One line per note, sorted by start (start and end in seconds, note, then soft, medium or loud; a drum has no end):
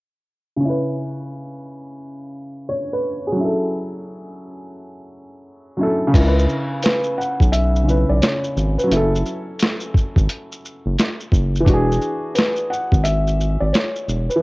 0.56 3.31 C#3 medium
0.61 3.33 C#4 medium
0.65 3.36 E4 medium
0.70 2.69 B4 medium
2.69 2.90 C#5 medium
2.93 3.25 B4 medium
3.27 3.59 G#4 medium
3.32 5.73 F#3 medium
3.36 5.75 C#4 medium
3.41 5.77 E4 medium
3.45 5.79 A4 medium
5.77 6.13 F#3 soft
5.77 6.10 C#4 soft
5.81 6.14 E4 soft
5.81 6.16 A4 medium
6.07 7.80 C#3 medium
6.12 6.47 C#2 loud
6.12 7.82 C#4 medium
6.12 kick loud
6.12 closed hi-hat medium
6.12 crash medium
6.12 shaker medium
6.16 7.84 E4 medium
6.21 6.26 A#4 medium
6.27 7.89 B4 medium
6.39 shaker soft
6.49 shaker soft
6.83 7.19 B4 medium
6.83 snare loud
6.83 closed hi-hat medium
6.83 shaker medium
7.04 shaker soft
7.18 7.50 F#5 medium
7.18 shaker soft
7.40 8.05 B1 medium
7.40 kick medium
7.40 shaker soft
7.52 8.11 E5 loud
7.52 closed hi-hat medium
7.52 shaker medium
7.76 shaker soft
7.83 8.88 C#3 soft
7.83 8.86 C#4 soft
7.88 8.91 E4 soft
7.88 8.92 B4 soft
7.88 shaker soft
8.09 8.21 B1 medium
8.09 8.22 D5 medium
8.22 8.80 C#5 medium
8.22 snare loud
8.22 closed hi-hat medium
8.22 shaker medium
8.44 shaker soft
8.57 8.77 G#1 medium
8.57 shaker soft
8.78 8.90 B4 medium
8.78 shaker medium
8.83 11.59 F#3 medium
8.88 9.23 F#1 loud
8.88 11.61 C#4 medium
8.88 10.93 A4 medium
8.92 11.63 E4 medium
8.92 closed hi-hat medium
8.92 shaker medium
8.97 11.65 A4 medium
9.16 shaker soft
9.26 shaker soft
9.59 snare loud
9.59 closed hi-hat medium
9.59 shaker medium
9.80 shaker soft
9.94 kick loud
9.94 shaker soft
10.16 10.28 G#1 medium
10.16 kick medium
10.16 shaker soft
10.29 closed hi-hat medium
10.29 shaker medium
10.52 shaker soft
10.65 shaker soft
10.86 10.97 F#1 medium
10.98 snare loud
10.98 closed hi-hat medium
10.98 shaker medium
11.20 shaker soft
11.32 11.64 F#1 loud
11.32 kick medium
11.32 shaker medium
11.55 shaker soft
11.60 14.34 E3 medium
11.65 11.99 E1 loud
11.65 14.37 D4 medium
11.65 kick loud
11.65 closed hi-hat medium
11.65 shaker medium
11.69 14.39 F#4 medium
11.74 14.42 G#4 medium
11.92 shaker soft
12.02 shaker soft
12.35 12.70 B4 medium
12.35 snare loud
12.35 closed hi-hat medium
12.35 shaker medium
12.56 shaker soft
12.70 13.02 F#5 medium
12.70 shaker soft
12.92 13.57 G#1 medium
12.92 kick medium
12.92 shaker soft
13.04 13.62 E5 loud
13.04 closed hi-hat medium
13.04 shaker medium
13.27 shaker soft
13.41 shaker soft
13.60 13.73 G#1 medium
13.60 13.73 D5 medium
13.73 14.31 C#5 medium
13.73 snare loud
13.73 closed hi-hat medium
13.73 shaker medium
13.96 shaker soft
14.08 14.29 E1 medium
14.08 shaker medium
14.30 14.42 B4 medium
14.30 shaker medium
14.36 14.42 E3 medium